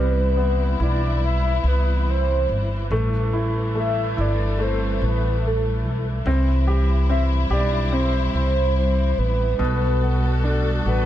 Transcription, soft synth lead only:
Already playing: B4
0.83 D5
1.26 E5
1.68 B4
2.10 C5
3.79 E5
4.21 D5
4.62 C5
4.96 C5
5.05 B4
5.47 A4
7.10 E5
7.52 D5
7.93 C5
8.36 C5
8.78 C5
9.19 B4
10.46 A4
10.88 B4

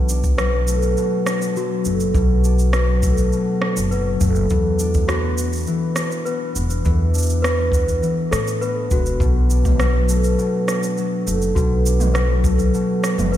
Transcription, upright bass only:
Already playing: B1
1.86 F#1
2.14 B1
3.77 F#1
4.21 F#1
4.51 E2
6.56 E1
6.86 E2
8.32 A2
8.91 E1
9.20 B1
11.27 F#1
11.56 B1
13.18 F#1

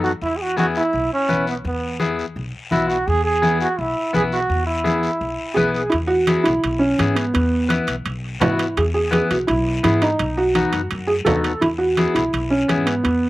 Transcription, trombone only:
0.04 F#4
0.22 E4
0.37 G#4
0.42 F#4
0.59 F#4
0.77 E4
1.13 C#4
1.49 B3
1.66 B3
2.71 E4
2.90 F#4
3.07 G#4
3.25 G#4
3.61 F#4
3.79 E4
4.15 G#4
4.33 F#4
4.67 E4

